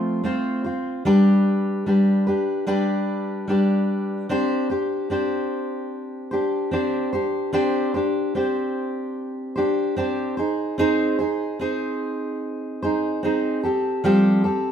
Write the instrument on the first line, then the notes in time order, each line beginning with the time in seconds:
steel-string acoustic guitar
Already playing: F3 A3 C4 F4 C5
0.24 A3 C4 F4 C5
0.64 C4 F4 C5
1.05 G3 D4 G4 B4
1.86 G3 D4 G4 B4
2.27 D4 G4 B4
2.67 G3 D4 G4 B4
3.48 G3 D4 G4 B4
4.29 C4 D4 G4 C5
4.70 D4 G4 C5
5.10 C4 D4 G4 C5
6.31 D4 G4 C5
6.71 C4 D4 G4 C5
7.13 D4 G4 C5
7.53 C4 D4 G4 C5
7.94 D4 G4 C5
8.35 C4 D4 G4 C5
9.56 D4 G4 C5
9.96 C4 D4 G4 C5
10.37 D#4 G#4 C5
10.78 C4 D#4 G#4 C5
11.19 D#4 G#4 C5
11.59 C4 D#4 G#4 C5
12.82 D#4 G#4 C5
13.23 C4 D#4 G#4 C5
13.63 C4 G4 A4
14.04 F3 G3 C4 G4 A4
14.44 C4 G4 A4